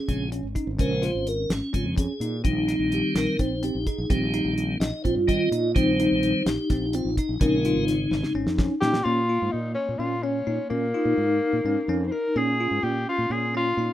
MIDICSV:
0, 0, Header, 1, 7, 480
1, 0, Start_track
1, 0, Tempo, 472069
1, 807, Time_signature, 7, 3, 24, 8
1, 14165, End_track
2, 0, Start_track
2, 0, Title_t, "Tenor saxophone"
2, 0, Program_c, 0, 66
2, 8954, Note_on_c, 0, 67, 93
2, 9194, Note_on_c, 0, 65, 89
2, 9209, Note_off_c, 0, 67, 0
2, 9677, Note_on_c, 0, 63, 82
2, 9692, Note_off_c, 0, 65, 0
2, 9901, Note_off_c, 0, 63, 0
2, 9908, Note_on_c, 0, 61, 88
2, 10151, Note_on_c, 0, 65, 85
2, 10166, Note_off_c, 0, 61, 0
2, 10397, Note_on_c, 0, 61, 96
2, 10413, Note_off_c, 0, 65, 0
2, 10870, Note_off_c, 0, 61, 0
2, 10876, Note_on_c, 0, 58, 97
2, 12272, Note_on_c, 0, 72, 73
2, 12287, Note_off_c, 0, 58, 0
2, 12318, Note_on_c, 0, 70, 101
2, 12333, Note_off_c, 0, 72, 0
2, 12577, Note_on_c, 0, 68, 103
2, 12592, Note_off_c, 0, 70, 0
2, 13049, Note_on_c, 0, 67, 99
2, 13064, Note_off_c, 0, 68, 0
2, 13289, Note_off_c, 0, 67, 0
2, 13308, Note_on_c, 0, 65, 97
2, 13540, Note_on_c, 0, 68, 92
2, 13556, Note_off_c, 0, 65, 0
2, 13774, Note_off_c, 0, 68, 0
2, 13791, Note_on_c, 0, 65, 102
2, 14165, Note_off_c, 0, 65, 0
2, 14165, End_track
3, 0, Start_track
3, 0, Title_t, "Vibraphone"
3, 0, Program_c, 1, 11
3, 0, Note_on_c, 1, 61, 85
3, 2208, Note_off_c, 1, 61, 0
3, 2495, Note_on_c, 1, 63, 84
3, 5138, Note_on_c, 1, 65, 106
3, 5213, Note_off_c, 1, 63, 0
3, 5813, Note_off_c, 1, 65, 0
3, 5843, Note_on_c, 1, 63, 91
3, 7509, Note_off_c, 1, 63, 0
3, 7521, Note_on_c, 1, 63, 84
3, 8959, Note_on_c, 1, 61, 68
3, 9009, Note_off_c, 1, 63, 0
3, 9070, Note_off_c, 1, 61, 0
3, 9197, Note_on_c, 1, 58, 74
3, 11136, Note_on_c, 1, 63, 93
3, 11181, Note_off_c, 1, 58, 0
3, 12569, Note_on_c, 1, 61, 86
3, 12615, Note_off_c, 1, 63, 0
3, 14165, Note_off_c, 1, 61, 0
3, 14165, End_track
4, 0, Start_track
4, 0, Title_t, "Tine electric piano"
4, 0, Program_c, 2, 4
4, 88, Note_on_c, 2, 61, 74
4, 232, Note_off_c, 2, 61, 0
4, 326, Note_on_c, 2, 61, 73
4, 471, Note_off_c, 2, 61, 0
4, 562, Note_on_c, 2, 63, 63
4, 709, Note_off_c, 2, 63, 0
4, 798, Note_on_c, 2, 61, 83
4, 946, Note_off_c, 2, 61, 0
4, 1040, Note_on_c, 2, 65, 67
4, 1333, Note_off_c, 2, 65, 0
4, 1761, Note_on_c, 2, 61, 70
4, 1908, Note_off_c, 2, 61, 0
4, 1999, Note_on_c, 2, 61, 78
4, 2147, Note_off_c, 2, 61, 0
4, 2252, Note_on_c, 2, 63, 67
4, 2396, Note_off_c, 2, 63, 0
4, 2480, Note_on_c, 2, 60, 80
4, 2628, Note_off_c, 2, 60, 0
4, 2727, Note_on_c, 2, 63, 70
4, 3018, Note_off_c, 2, 63, 0
4, 3452, Note_on_c, 2, 60, 78
4, 3597, Note_off_c, 2, 60, 0
4, 3690, Note_on_c, 2, 60, 81
4, 3835, Note_off_c, 2, 60, 0
4, 3934, Note_on_c, 2, 63, 71
4, 4078, Note_off_c, 2, 63, 0
4, 4171, Note_on_c, 2, 60, 78
4, 4315, Note_off_c, 2, 60, 0
4, 4415, Note_on_c, 2, 63, 76
4, 4703, Note_off_c, 2, 63, 0
4, 5131, Note_on_c, 2, 60, 75
4, 5276, Note_off_c, 2, 60, 0
4, 5371, Note_on_c, 2, 60, 83
4, 5516, Note_off_c, 2, 60, 0
4, 5615, Note_on_c, 2, 63, 78
4, 5759, Note_off_c, 2, 63, 0
4, 5858, Note_on_c, 2, 60, 85
4, 6001, Note_off_c, 2, 60, 0
4, 6102, Note_on_c, 2, 63, 68
4, 6388, Note_off_c, 2, 63, 0
4, 6819, Note_on_c, 2, 60, 77
4, 6961, Note_off_c, 2, 60, 0
4, 7064, Note_on_c, 2, 60, 90
4, 7205, Note_off_c, 2, 60, 0
4, 7307, Note_on_c, 2, 63, 73
4, 7447, Note_off_c, 2, 63, 0
4, 7549, Note_on_c, 2, 61, 81
4, 7688, Note_off_c, 2, 61, 0
4, 7784, Note_on_c, 2, 65, 71
4, 8070, Note_off_c, 2, 65, 0
4, 8492, Note_on_c, 2, 61, 85
4, 8636, Note_off_c, 2, 61, 0
4, 8736, Note_on_c, 2, 61, 87
4, 8879, Note_off_c, 2, 61, 0
4, 8973, Note_on_c, 2, 63, 76
4, 9117, Note_off_c, 2, 63, 0
4, 9207, Note_on_c, 2, 61, 77
4, 9353, Note_off_c, 2, 61, 0
4, 9450, Note_on_c, 2, 65, 63
4, 9740, Note_off_c, 2, 65, 0
4, 10169, Note_on_c, 2, 61, 74
4, 10314, Note_off_c, 2, 61, 0
4, 10406, Note_on_c, 2, 61, 83
4, 10552, Note_off_c, 2, 61, 0
4, 10646, Note_on_c, 2, 63, 72
4, 10792, Note_off_c, 2, 63, 0
4, 10885, Note_on_c, 2, 61, 80
4, 11032, Note_off_c, 2, 61, 0
4, 11126, Note_on_c, 2, 65, 70
4, 11417, Note_off_c, 2, 65, 0
4, 11852, Note_on_c, 2, 61, 79
4, 11996, Note_off_c, 2, 61, 0
4, 12092, Note_on_c, 2, 61, 92
4, 12236, Note_off_c, 2, 61, 0
4, 12329, Note_on_c, 2, 63, 69
4, 12474, Note_off_c, 2, 63, 0
4, 12568, Note_on_c, 2, 61, 80
4, 12713, Note_off_c, 2, 61, 0
4, 12815, Note_on_c, 2, 65, 70
4, 13103, Note_off_c, 2, 65, 0
4, 13535, Note_on_c, 2, 61, 78
4, 13678, Note_off_c, 2, 61, 0
4, 13775, Note_on_c, 2, 61, 84
4, 13918, Note_off_c, 2, 61, 0
4, 14016, Note_on_c, 2, 63, 72
4, 14158, Note_off_c, 2, 63, 0
4, 14165, End_track
5, 0, Start_track
5, 0, Title_t, "Tonewheel organ"
5, 0, Program_c, 3, 16
5, 0, Note_on_c, 3, 68, 93
5, 83, Note_on_c, 3, 49, 44
5, 89, Note_on_c, 3, 56, 41
5, 89, Note_on_c, 3, 60, 49
5, 289, Note_off_c, 3, 68, 0
5, 301, Note_off_c, 3, 49, 0
5, 304, Note_off_c, 3, 56, 0
5, 304, Note_off_c, 3, 60, 0
5, 807, Note_on_c, 3, 49, 52
5, 814, Note_on_c, 3, 56, 51
5, 818, Note_on_c, 3, 70, 93
5, 819, Note_on_c, 3, 72, 59
5, 1046, Note_off_c, 3, 72, 0
5, 1058, Note_on_c, 3, 72, 89
5, 1060, Note_off_c, 3, 70, 0
5, 1127, Note_off_c, 3, 49, 0
5, 1130, Note_off_c, 3, 56, 0
5, 1300, Note_off_c, 3, 72, 0
5, 1307, Note_on_c, 3, 70, 95
5, 1544, Note_off_c, 3, 70, 0
5, 1545, Note_on_c, 3, 61, 83
5, 1761, Note_off_c, 3, 61, 0
5, 1767, Note_on_c, 3, 49, 42
5, 1775, Note_on_c, 3, 56, 42
5, 1776, Note_on_c, 3, 60, 49
5, 1785, Note_on_c, 3, 65, 73
5, 1890, Note_off_c, 3, 65, 0
5, 1984, Note_off_c, 3, 49, 0
5, 1988, Note_off_c, 3, 56, 0
5, 1988, Note_off_c, 3, 60, 0
5, 2019, Note_on_c, 3, 68, 80
5, 2461, Note_off_c, 3, 68, 0
5, 2482, Note_on_c, 3, 51, 50
5, 2488, Note_on_c, 3, 55, 46
5, 2494, Note_on_c, 3, 60, 61
5, 2989, Note_on_c, 3, 67, 89
5, 3196, Note_off_c, 3, 51, 0
5, 3200, Note_off_c, 3, 55, 0
5, 3202, Note_off_c, 3, 60, 0
5, 3209, Note_on_c, 3, 51, 48
5, 3212, Note_on_c, 3, 55, 41
5, 3215, Note_on_c, 3, 60, 47
5, 3226, Note_off_c, 3, 67, 0
5, 3226, Note_on_c, 3, 70, 95
5, 3425, Note_off_c, 3, 51, 0
5, 3427, Note_off_c, 3, 55, 0
5, 3428, Note_off_c, 3, 60, 0
5, 3458, Note_on_c, 3, 72, 93
5, 3465, Note_off_c, 3, 70, 0
5, 3701, Note_off_c, 3, 72, 0
5, 3702, Note_on_c, 3, 67, 85
5, 3938, Note_on_c, 3, 68, 80
5, 3943, Note_off_c, 3, 67, 0
5, 4168, Note_on_c, 3, 51, 50
5, 4172, Note_on_c, 3, 55, 50
5, 4174, Note_on_c, 3, 67, 72
5, 4181, Note_off_c, 3, 68, 0
5, 4182, Note_on_c, 3, 60, 53
5, 4619, Note_off_c, 3, 67, 0
5, 4853, Note_off_c, 3, 51, 0
5, 4855, Note_off_c, 3, 55, 0
5, 4861, Note_off_c, 3, 60, 0
5, 4883, Note_on_c, 3, 75, 98
5, 5110, Note_off_c, 3, 75, 0
5, 5125, Note_on_c, 3, 72, 86
5, 5234, Note_off_c, 3, 72, 0
5, 5365, Note_on_c, 3, 51, 47
5, 5367, Note_on_c, 3, 55, 43
5, 5370, Note_on_c, 3, 75, 94
5, 5375, Note_on_c, 3, 60, 51
5, 5583, Note_off_c, 3, 51, 0
5, 5584, Note_off_c, 3, 55, 0
5, 5589, Note_off_c, 3, 60, 0
5, 5817, Note_off_c, 3, 75, 0
5, 5846, Note_on_c, 3, 51, 53
5, 5849, Note_on_c, 3, 55, 49
5, 5853, Note_on_c, 3, 72, 98
5, 5860, Note_on_c, 3, 60, 64
5, 6532, Note_off_c, 3, 51, 0
5, 6534, Note_off_c, 3, 55, 0
5, 6540, Note_off_c, 3, 60, 0
5, 6577, Note_on_c, 3, 67, 88
5, 6593, Note_off_c, 3, 72, 0
5, 7061, Note_on_c, 3, 65, 82
5, 7068, Note_off_c, 3, 67, 0
5, 7280, Note_off_c, 3, 65, 0
5, 7303, Note_on_c, 3, 63, 77
5, 7522, Note_on_c, 3, 49, 58
5, 7533, Note_on_c, 3, 56, 47
5, 7536, Note_on_c, 3, 70, 80
5, 7539, Note_on_c, 3, 60, 61
5, 7544, Note_off_c, 3, 63, 0
5, 7980, Note_off_c, 3, 70, 0
5, 8239, Note_off_c, 3, 49, 0
5, 8241, Note_off_c, 3, 56, 0
5, 8247, Note_off_c, 3, 60, 0
5, 8252, Note_on_c, 3, 49, 50
5, 8253, Note_on_c, 3, 56, 47
5, 8259, Note_on_c, 3, 60, 53
5, 8467, Note_off_c, 3, 49, 0
5, 8468, Note_off_c, 3, 56, 0
5, 8471, Note_off_c, 3, 60, 0
5, 14165, End_track
6, 0, Start_track
6, 0, Title_t, "Fretless electric bass"
6, 0, Program_c, 4, 35
6, 83, Note_on_c, 4, 34, 75
6, 404, Note_off_c, 4, 34, 0
6, 436, Note_on_c, 4, 32, 69
6, 547, Note_off_c, 4, 32, 0
6, 681, Note_on_c, 4, 32, 80
6, 790, Note_off_c, 4, 32, 0
6, 804, Note_on_c, 4, 34, 93
6, 1125, Note_off_c, 4, 34, 0
6, 1169, Note_on_c, 4, 32, 78
6, 1487, Note_off_c, 4, 32, 0
6, 1518, Note_on_c, 4, 32, 84
6, 1629, Note_off_c, 4, 32, 0
6, 1771, Note_on_c, 4, 32, 74
6, 1876, Note_off_c, 4, 32, 0
6, 1880, Note_on_c, 4, 41, 73
6, 2096, Note_off_c, 4, 41, 0
6, 2238, Note_on_c, 4, 46, 81
6, 2455, Note_off_c, 4, 46, 0
6, 2488, Note_on_c, 4, 34, 95
6, 2807, Note_off_c, 4, 34, 0
6, 2838, Note_on_c, 4, 34, 84
6, 3056, Note_off_c, 4, 34, 0
6, 3201, Note_on_c, 4, 34, 77
6, 3311, Note_off_c, 4, 34, 0
6, 3450, Note_on_c, 4, 34, 73
6, 3768, Note_off_c, 4, 34, 0
6, 3812, Note_on_c, 4, 34, 73
6, 3917, Note_off_c, 4, 34, 0
6, 4049, Note_on_c, 4, 34, 89
6, 4156, Note_off_c, 4, 34, 0
6, 4167, Note_on_c, 4, 34, 100
6, 4487, Note_off_c, 4, 34, 0
6, 4522, Note_on_c, 4, 34, 90
6, 4844, Note_off_c, 4, 34, 0
6, 4881, Note_on_c, 4, 34, 90
6, 4991, Note_off_c, 4, 34, 0
6, 5136, Note_on_c, 4, 34, 74
6, 5239, Note_off_c, 4, 34, 0
6, 5245, Note_on_c, 4, 43, 76
6, 5460, Note_off_c, 4, 43, 0
6, 5607, Note_on_c, 4, 46, 78
6, 5821, Note_off_c, 4, 46, 0
6, 5853, Note_on_c, 4, 34, 91
6, 6171, Note_off_c, 4, 34, 0
6, 6218, Note_on_c, 4, 34, 83
6, 6427, Note_off_c, 4, 34, 0
6, 6565, Note_on_c, 4, 34, 81
6, 6674, Note_off_c, 4, 34, 0
6, 6811, Note_on_c, 4, 34, 78
6, 7129, Note_off_c, 4, 34, 0
6, 7168, Note_on_c, 4, 34, 80
6, 7275, Note_off_c, 4, 34, 0
6, 7411, Note_on_c, 4, 34, 92
6, 7517, Note_off_c, 4, 34, 0
6, 7531, Note_on_c, 4, 34, 102
6, 7849, Note_off_c, 4, 34, 0
6, 7885, Note_on_c, 4, 32, 85
6, 8206, Note_off_c, 4, 32, 0
6, 8247, Note_on_c, 4, 32, 96
6, 8354, Note_off_c, 4, 32, 0
6, 8484, Note_on_c, 4, 32, 75
6, 8593, Note_off_c, 4, 32, 0
6, 8608, Note_on_c, 4, 41, 81
6, 8821, Note_off_c, 4, 41, 0
6, 8973, Note_on_c, 4, 46, 82
6, 9184, Note_off_c, 4, 46, 0
6, 9209, Note_on_c, 4, 46, 102
6, 9528, Note_off_c, 4, 46, 0
6, 9579, Note_on_c, 4, 44, 79
6, 9681, Note_off_c, 4, 44, 0
6, 9697, Note_on_c, 4, 46, 77
6, 9906, Note_off_c, 4, 46, 0
6, 10053, Note_on_c, 4, 46, 80
6, 10153, Note_off_c, 4, 46, 0
6, 10159, Note_on_c, 4, 46, 78
6, 10588, Note_off_c, 4, 46, 0
6, 10646, Note_on_c, 4, 46, 85
6, 10754, Note_off_c, 4, 46, 0
6, 10887, Note_on_c, 4, 46, 97
6, 11100, Note_off_c, 4, 46, 0
6, 11238, Note_on_c, 4, 46, 83
6, 11350, Note_off_c, 4, 46, 0
6, 11364, Note_on_c, 4, 44, 87
6, 11579, Note_off_c, 4, 44, 0
6, 11724, Note_on_c, 4, 46, 80
6, 11833, Note_off_c, 4, 46, 0
6, 11841, Note_on_c, 4, 44, 70
6, 11951, Note_off_c, 4, 44, 0
6, 12081, Note_on_c, 4, 41, 85
6, 12297, Note_off_c, 4, 41, 0
6, 12564, Note_on_c, 4, 46, 104
6, 12884, Note_off_c, 4, 46, 0
6, 12924, Note_on_c, 4, 44, 79
6, 13032, Note_off_c, 4, 44, 0
6, 13046, Note_on_c, 4, 46, 87
6, 13260, Note_off_c, 4, 46, 0
6, 13405, Note_on_c, 4, 46, 82
6, 13513, Note_off_c, 4, 46, 0
6, 13523, Note_on_c, 4, 46, 80
6, 13950, Note_off_c, 4, 46, 0
6, 14004, Note_on_c, 4, 46, 90
6, 14112, Note_off_c, 4, 46, 0
6, 14165, End_track
7, 0, Start_track
7, 0, Title_t, "Drums"
7, 87, Note_on_c, 9, 36, 67
7, 88, Note_on_c, 9, 42, 58
7, 188, Note_off_c, 9, 36, 0
7, 190, Note_off_c, 9, 42, 0
7, 328, Note_on_c, 9, 42, 63
7, 429, Note_off_c, 9, 42, 0
7, 566, Note_on_c, 9, 36, 65
7, 568, Note_on_c, 9, 42, 58
7, 668, Note_off_c, 9, 36, 0
7, 670, Note_off_c, 9, 42, 0
7, 806, Note_on_c, 9, 36, 100
7, 806, Note_on_c, 9, 42, 73
7, 907, Note_off_c, 9, 42, 0
7, 908, Note_off_c, 9, 36, 0
7, 1048, Note_on_c, 9, 38, 31
7, 1048, Note_on_c, 9, 42, 59
7, 1150, Note_off_c, 9, 38, 0
7, 1150, Note_off_c, 9, 42, 0
7, 1289, Note_on_c, 9, 42, 59
7, 1391, Note_off_c, 9, 42, 0
7, 1528, Note_on_c, 9, 38, 103
7, 1528, Note_on_c, 9, 42, 76
7, 1630, Note_off_c, 9, 38, 0
7, 1630, Note_off_c, 9, 42, 0
7, 1768, Note_on_c, 9, 36, 71
7, 1770, Note_on_c, 9, 42, 55
7, 1870, Note_off_c, 9, 36, 0
7, 1871, Note_off_c, 9, 42, 0
7, 2008, Note_on_c, 9, 36, 86
7, 2009, Note_on_c, 9, 42, 81
7, 2110, Note_off_c, 9, 36, 0
7, 2111, Note_off_c, 9, 42, 0
7, 2250, Note_on_c, 9, 42, 63
7, 2352, Note_off_c, 9, 42, 0
7, 2487, Note_on_c, 9, 42, 85
7, 2488, Note_on_c, 9, 36, 100
7, 2589, Note_off_c, 9, 36, 0
7, 2589, Note_off_c, 9, 42, 0
7, 2731, Note_on_c, 9, 38, 32
7, 2731, Note_on_c, 9, 42, 57
7, 2832, Note_off_c, 9, 38, 0
7, 2832, Note_off_c, 9, 42, 0
7, 2969, Note_on_c, 9, 42, 53
7, 3071, Note_off_c, 9, 42, 0
7, 3209, Note_on_c, 9, 38, 109
7, 3209, Note_on_c, 9, 42, 74
7, 3310, Note_off_c, 9, 38, 0
7, 3310, Note_off_c, 9, 42, 0
7, 3449, Note_on_c, 9, 42, 55
7, 3450, Note_on_c, 9, 36, 69
7, 3551, Note_off_c, 9, 42, 0
7, 3552, Note_off_c, 9, 36, 0
7, 3690, Note_on_c, 9, 42, 70
7, 3791, Note_off_c, 9, 42, 0
7, 3931, Note_on_c, 9, 36, 67
7, 3931, Note_on_c, 9, 42, 52
7, 4033, Note_off_c, 9, 36, 0
7, 4033, Note_off_c, 9, 42, 0
7, 4170, Note_on_c, 9, 36, 101
7, 4171, Note_on_c, 9, 42, 73
7, 4272, Note_off_c, 9, 36, 0
7, 4272, Note_off_c, 9, 42, 0
7, 4410, Note_on_c, 9, 42, 59
7, 4511, Note_off_c, 9, 42, 0
7, 4654, Note_on_c, 9, 42, 54
7, 4755, Note_off_c, 9, 42, 0
7, 4895, Note_on_c, 9, 38, 109
7, 4895, Note_on_c, 9, 42, 77
7, 4997, Note_off_c, 9, 38, 0
7, 4997, Note_off_c, 9, 42, 0
7, 5135, Note_on_c, 9, 36, 65
7, 5138, Note_on_c, 9, 42, 51
7, 5236, Note_off_c, 9, 36, 0
7, 5239, Note_off_c, 9, 42, 0
7, 5375, Note_on_c, 9, 36, 86
7, 5377, Note_on_c, 9, 42, 68
7, 5477, Note_off_c, 9, 36, 0
7, 5479, Note_off_c, 9, 42, 0
7, 5617, Note_on_c, 9, 42, 61
7, 5719, Note_off_c, 9, 42, 0
7, 5855, Note_on_c, 9, 36, 108
7, 5857, Note_on_c, 9, 42, 78
7, 5957, Note_off_c, 9, 36, 0
7, 5959, Note_off_c, 9, 42, 0
7, 6098, Note_on_c, 9, 42, 62
7, 6199, Note_off_c, 9, 42, 0
7, 6335, Note_on_c, 9, 42, 61
7, 6436, Note_off_c, 9, 42, 0
7, 6573, Note_on_c, 9, 38, 108
7, 6573, Note_on_c, 9, 42, 83
7, 6675, Note_off_c, 9, 38, 0
7, 6675, Note_off_c, 9, 42, 0
7, 6812, Note_on_c, 9, 38, 30
7, 6812, Note_on_c, 9, 42, 62
7, 6813, Note_on_c, 9, 36, 77
7, 6914, Note_off_c, 9, 38, 0
7, 6914, Note_off_c, 9, 42, 0
7, 6915, Note_off_c, 9, 36, 0
7, 7049, Note_on_c, 9, 42, 70
7, 7151, Note_off_c, 9, 42, 0
7, 7294, Note_on_c, 9, 36, 76
7, 7298, Note_on_c, 9, 42, 63
7, 7396, Note_off_c, 9, 36, 0
7, 7399, Note_off_c, 9, 42, 0
7, 7533, Note_on_c, 9, 42, 81
7, 7534, Note_on_c, 9, 36, 99
7, 7635, Note_off_c, 9, 36, 0
7, 7635, Note_off_c, 9, 42, 0
7, 7777, Note_on_c, 9, 42, 52
7, 7878, Note_off_c, 9, 42, 0
7, 8013, Note_on_c, 9, 38, 32
7, 8013, Note_on_c, 9, 42, 56
7, 8115, Note_off_c, 9, 38, 0
7, 8115, Note_off_c, 9, 42, 0
7, 8255, Note_on_c, 9, 38, 62
7, 8357, Note_off_c, 9, 38, 0
7, 8372, Note_on_c, 9, 38, 59
7, 8474, Note_off_c, 9, 38, 0
7, 8609, Note_on_c, 9, 38, 68
7, 8711, Note_off_c, 9, 38, 0
7, 8726, Note_on_c, 9, 38, 82
7, 8730, Note_on_c, 9, 36, 102
7, 8828, Note_off_c, 9, 38, 0
7, 8831, Note_off_c, 9, 36, 0
7, 8966, Note_on_c, 9, 38, 97
7, 9068, Note_off_c, 9, 38, 0
7, 9086, Note_on_c, 9, 38, 94
7, 9188, Note_off_c, 9, 38, 0
7, 14165, End_track
0, 0, End_of_file